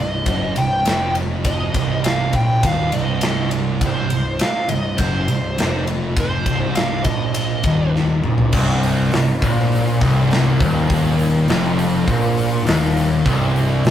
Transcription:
0.00 0.25 C1 medium
0.00 0.21 C2 medium
0.00 0.60 D#5 medium
0.26 0.54 F#1 medium
0.26 0.55 F#2 loud
0.26 kick loud
0.26 ride medium
0.56 0.84 C1 medium
0.56 0.80 C2 medium
0.56 1.12 G5 loud
0.56 ride medium
0.85 1.71 F1 medium
0.85 1.73 F2 loud
0.85 snare loud
0.85 ride loud
1.15 ride medium
1.45 2.01 D#5 medium
1.45 kick loud
1.45 ride medium
1.74 2.30 C1 medium
1.74 2.33 C2 loud
1.74 kick loud
1.74 ride medium
2.04 2.35 F5 medium
2.04 snare loud
2.04 ride loud
2.33 2.61 A#1 medium
2.33 2.63 A#2 medium
2.33 2.65 G5 loud
2.33 kick loud
2.33 ride medium
2.63 2.91 D#1 medium
2.63 2.92 D#2 medium
2.63 2.94 F5 medium
2.63 kick loud
2.63 ride loud
2.92 3.78 C1 medium
2.92 3.80 C2 loud
2.92 3.49 D#5 medium
2.92 ride medium
3.21 snare loud
3.21 ride loud
3.51 ride medium
3.81 4.08 C1 medium
3.81 4.11 C2 loud
3.81 kick loud
3.81 ride medium
3.87 4.45 C5 medium
4.10 4.35 C2 medium
4.10 ride medium
4.14 4.40 C1 medium
4.39 4.70 F5 loud
4.39 snare loud
4.39 ride loud
4.69 4.98 C1 medium
4.69 4.93 C2 medium
4.69 5.01 D#5 medium
4.69 ride medium
4.98 5.26 F#1 medium
4.98 5.27 F#2 loud
4.98 5.84 C5 medium
4.98 kick loud
4.98 ride medium
5.27 5.57 C1 medium
5.27 5.52 C2 medium
5.27 ride medium
5.57 6.44 F1 medium
5.57 6.46 F2 loud
5.57 snare loud
5.57 ride medium
5.87 ride medium
6.17 6.80 C5 medium
6.17 kick loud
6.17 ride medium
6.46 7.02 C1 medium
6.46 7.05 C2 loud
6.46 kick loud
6.46 ride medium
6.75 7.04 F5 medium
6.75 snare loud
6.75 ride medium
7.04 7.60 A#1 medium
7.04 7.64 A#2 loud
7.04 7.90 D#5 loud
7.04 kick loud
7.04 ride medium
7.34 ride loud
7.63 8.20 D#1 medium
7.63 8.22 D#2 loud
7.63 kick loud
7.63 ride medium
7.96 snare medium
8.23 8.52 A#1 medium
8.23 8.52 A#2 loud
8.23 mid tom medium
8.38 floor tom medium
8.52 9.09 C1 medium
8.52 9.12 C2 loud
8.52 kick loud
8.52 crash loud
8.83 open hi-hat medium
9.12 9.40 C1 medium
9.12 9.37 C2 medium
9.12 snare loud
9.12 open hi-hat medium
9.42 9.97 A#1 loud
9.42 10.01 A#2 loud
9.42 kick loud
9.42 open hi-hat medium
9.59 snare soft
9.72 open hi-hat medium
10.01 10.57 C1 loud
10.01 10.61 C2 loud
10.01 kick loud
10.01 open hi-hat medium
10.31 snare loud
10.31 open hi-hat medium
10.60 11.45 D#1 medium
10.60 11.49 D#2 loud
10.60 kick loud
10.60 open hi-hat medium
10.90 kick loud
10.90 open hi-hat medium
11.19 open hi-hat medium
11.48 12.04 F1 loud
11.48 12.08 F2 loud
11.48 snare loud
11.48 open hi-hat medium
11.79 open hi-hat medium
12.07 12.63 A#1 medium
12.07 12.67 A#2 loud
12.07 kick loud
12.07 open hi-hat medium
12.37 open hi-hat medium
12.67 13.22 D#1 medium
12.67 13.25 D#2 medium
12.67 snare loud
12.67 open hi-hat loud
12.97 open hi-hat medium
13.25 13.81 C1 medium
13.25 13.84 C2 loud
13.25 kick loud
13.25 open hi-hat medium
13.56 open hi-hat medium
13.85 13.91 C1 medium
13.85 13.91 C2 medium
13.85 snare loud
13.85 open hi-hat medium

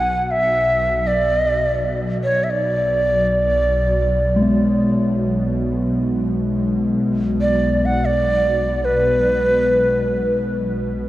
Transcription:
0.00 11.09 B1 medium
0.00 0.32 F#5 medium
0.31 1.08 E5 medium
1.07 1.97 D5 medium
2.24 2.45 C#5 medium
2.44 2.52 E5 soft
2.51 4.91 D5 medium
4.36 11.09 G#3 medium
4.41 11.09 B3 soft
7.41 7.87 D5 medium
7.86 8.07 F#5 medium
8.06 8.86 D5 medium
8.85 10.45 B4 medium

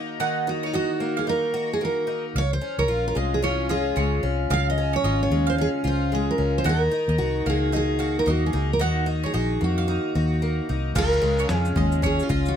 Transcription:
0.00 0.19 D#3 medium
0.00 0.99 A#3 medium
0.00 0.46 D#4 medium
0.00 0.72 F#4 medium
0.20 2.35 D#3 medium
0.20 0.46 F#5 medium
0.47 1.26 D#4 medium
0.47 0.66 F#4 medium
0.63 0.75 D#4 medium
0.63 0.74 C#5 medium
0.74 1.53 F#4 medium
0.74 1.15 F#4 medium
0.74 0.90 D#5 medium
1.00 1.80 A#3 soft
1.17 1.28 G#4 medium
1.17 1.53 F5 medium
1.27 2.06 D#4 medium
1.27 1.69 A#4 medium
1.54 2.42 F#4 medium
1.73 1.83 G#4 medium
1.81 2.42 A#3 soft
1.81 2.24 A#4 medium
2.07 2.41 D#4 soft
2.35 2.58 C#2 medium
2.35 2.52 C#5 loud
2.35 2.51 F5 medium
2.53 2.79 C5 medium
2.61 3.41 C#4 medium
2.78 2.90 C#2 medium
2.78 3.04 A#4 medium
2.78 2.89 C#5 medium
2.88 3.12 A#1 medium
2.88 3.68 F4 medium
3.08 3.15 A#4 medium
3.15 3.93 C2 medium
3.15 3.95 G#3 soft
3.15 3.42 D#5 medium
3.34 3.43 G#4 medium
3.42 4.22 C#4 medium
3.42 3.70 F4 medium
3.42 3.69 C#5 medium
3.69 5.04 F4 medium
3.69 4.21 G#4 medium
3.69 3.85 D#5 medium
3.96 4.19 C#2 medium
3.96 5.30 G#3 medium
3.96 4.37 C#5 medium
4.23 4.46 C2 medium
4.23 4.77 C#4 medium
4.50 4.95 C#2 medium
4.50 6.66 C#3 medium
4.50 4.76 F5 medium
4.50 4.69 F5 medium
4.70 4.93 D#5 medium
4.78 5.57 C#4 medium
4.93 5.04 C#5 medium
4.93 5.21 C#5 medium
5.04 5.26 G#1 medium
5.04 5.83 F4 medium
5.04 5.20 D#5 medium
5.23 5.47 C#5 medium
5.31 5.66 D#2 medium
5.31 6.11 G#3 medium
5.47 5.54 C5 medium
5.47 5.83 F5 medium
5.58 6.37 C#4 medium
5.58 5.68 G#4 medium
5.84 6.29 C#2 medium
5.84 6.72 F4 medium
5.84 6.11 C5 medium
6.12 6.72 G#3 medium
6.12 6.30 G#4 medium
6.31 6.57 A#4 medium
6.38 6.61 C#2 medium
6.38 6.72 C#4 soft
6.58 6.68 C5 medium
6.64 6.88 D#2 medium
6.64 8.78 D#3 medium
6.64 6.81 F#5 medium
6.69 7.44 A#4 medium
6.91 7.71 D#4 medium
7.08 7.17 D#2 medium
7.08 7.19 D#5 medium
7.18 7.41 C2 medium
7.18 7.98 F#4 medium
7.46 8.23 C#2 medium
7.46 8.25 A#3 soft
7.46 7.73 G#4 medium
7.46 7.73 F5 medium
7.72 8.52 D#4 medium
7.72 8.19 G#4 medium
7.72 7.99 D#5 medium
7.99 9.32 F#4 medium
7.99 8.15 F5 medium
8.19 8.28 A#4 medium
8.26 8.49 D#2 medium
8.26 9.60 A#3 medium
8.26 8.44 F#4 medium
8.26 8.68 D#5 medium
8.46 8.73 G#4 medium
8.53 8.81 C#2 medium
8.53 9.05 D#4 medium
8.73 8.82 A#4 medium
8.79 9.25 D#2 medium
8.79 10.95 D#3 medium
8.79 9.22 F#4 medium
8.79 9.07 F#5 medium
9.06 9.87 D#4 medium
9.23 9.64 G#4 medium
9.23 9.34 C#5 medium
9.34 9.57 A#1 medium
9.34 10.14 F#4 medium
9.34 9.50 D#5 medium
9.61 9.97 F2 medium
9.61 10.41 A#3 soft
9.61 10.66 F#4 medium
9.78 10.13 F5 medium
9.88 10.68 D#4 medium
10.15 10.60 D#2 medium
10.15 10.95 F#4 medium
10.42 11.02 A#3 soft
10.69 10.91 C2 medium
10.69 11.02 D#4 soft
10.95 11.18 C#2 medium
10.95 12.56 C#3 medium
10.95 12.28 F4 medium
10.95 11.53 A#4 loud
10.95 11.11 F5 medium
10.95 kick loud
10.95 crash medium
10.95 shaker medium
11.12 shaker soft
11.22 11.45 C#2 medium
11.22 11.74 G#3 medium
11.39 11.50 C#5 medium
11.39 shaker soft
11.49 11.72 F2 medium
11.49 12.01 C#4 soft
11.49 snare loud
11.49 shaker medium
11.53 11.74 G#4 loud
11.65 shaker medium
11.76 12.20 D#2 medium
11.76 12.56 G#3 medium
11.76 12.02 D#5 medium
11.76 kick medium
11.92 shaker soft
12.02 12.55 C#4 medium
12.02 12.23 G#4 medium
12.02 12.29 C#5 medium
12.02 kick medium
12.02 shaker medium
12.19 12.48 F4 medium
12.19 shaker soft
12.29 12.52 C#2 loud
12.29 12.56 F4 medium
12.29 12.46 D#5 medium
12.29 kick medium
12.46 12.56 F#4 medium
12.46 shaker soft

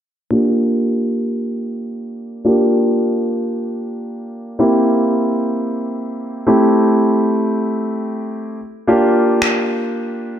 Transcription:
0.31 2.41 A#3 medium
0.31 2.41 D4 medium
0.31 2.41 F4 medium
0.31 2.41 G4 medium
2.45 4.55 A#3 medium
2.45 4.55 D4 medium
2.45 4.56 F4 medium
2.45 4.56 G4 medium
4.59 6.43 A#3 medium
4.59 6.43 C4 medium
4.59 6.43 E4 medium
4.59 6.44 G4 medium
6.47 8.57 A3 medium
6.47 8.57 C4 medium
6.47 8.57 E4 medium
6.47 8.58 G4 medium
8.88 10.39 A#3 medium
8.88 10.39 D4 medium
8.88 10.39 F4 medium
8.88 10.39 G4 medium
9.42 finger snap loud

